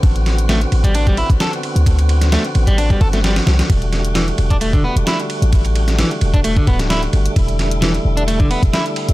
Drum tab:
RD |x-x-x-x-x-x-x-x-|xxx-x-x-x-x-xxxx|x-x-x-x-x---x-x-|xxx-x-x-x-x-x-x-|
HH |xx-xxx-xxx-xxx-x|xx-xxx-xxx-xxx-x|xx-xxx-xxx-xxx-x|xx-xxx-xxx-xxx-x|
SD |--o-o-------o---|---oo------ooooo|--o-o-------o---|---oo------oo---|
BD |o------o-o-o----|o------o-oo-----|o------o-o------|o------o-oo-----|

RD |x-x-x---x-x-x-x-|
HH |xx-xxx-xxx-xxx-x|
SD |--o-o-------o---|
BD |o--------o-o----|